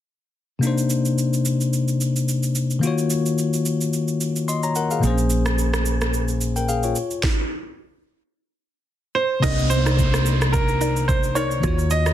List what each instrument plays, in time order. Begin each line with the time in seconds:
0.59 tine electric piano C3 A#3 D4, shaker
0.65 tine electric piano D#4 C5
0.78 shaker
0.90 shaker
1.05 shaker
1.18 shaker
1.33 shaker
1.45 shaker
1.61 shaker
1.73 shaker
1.88 shaker
2.01 shaker
2.16 shaker
2.29 shaker
2.43 shaker
2.55 shaker
2.70 shaker
2.79 tine electric piano D#3 A#3, shaker
2.83 tine electric piano F4 F#4 C#5
2.98 shaker
3.10 shaker
3.26 shaker
3.38 shaker
3.53 shaker
3.66 shaker
3.81 shaker
3.93 shaker
4.08 shaker
4.21 shaker
4.36 shaker
4.48 tine electric piano D#5 C6, shaker
4.63 tine electric piano C#5 A#5, shaker
4.75 tine electric piano A#4 F#5, shaker
4.91 tine electric piano G#4 F5, shaker
4.99 fingered electric bass A#1, tine electric piano A#2 A#3 C4, shaker
5.05 tine electric piano G#4 C5
5.10 tine electric piano C#4
5.18 shaker
5.30 shaker
5.46 cross-stick, shaker
5.59 shaker
5.74 cross-stick, shaker
5.86 shaker
6.01 cross-stick, shaker
6.14 shaker
6.28 shaker
6.41 shaker
6.56 tine electric piano A#4 G5, shaker
6.69 tine electric piano G#4 F5, shaker
6.83 tine electric piano F4 C#5, shaker
6.96 shaker
7.11 shaker
7.23 kick, snare
9.15 grand piano C5
9.40 fingered electric bass C2, tine electric piano C3 A#3 D4, synth pluck D#4 A#4 D5, grand piano D#5, kick, crash, downlifter, shaker
9.46 tine electric piano D#4 C5
9.59 shaker
9.70 grand piano C5, shaker
9.86 synth pluck D#4 A#4 D5, cross-stick, shaker
9.99 kick, shaker
10.14 cross-stick, shaker
10.26 shaker
10.41 cross-stick, shaker
10.52 grand piano A#4, kick, shaker
10.69 shaker
10.81 synth pluck D#4 A#4 D5, shaker
10.97 shaker
11.08 grand piano C5, kick, shaker
11.23 shaker
11.35 synth pluck D#4 A#4 D5, grand piano C#5, shaker
11.51 shaker
11.60 fingered electric bass D#2, tine electric piano D#3 A#3 F4, synth pluck F4 F#4, kick, shaker
11.64 tine electric piano F#4 C#5, synth pluck C#5
11.79 shaker
11.91 grand piano D#5, shaker
12.06 synth pluck F4 F#4 C#5, cross-stick, shaker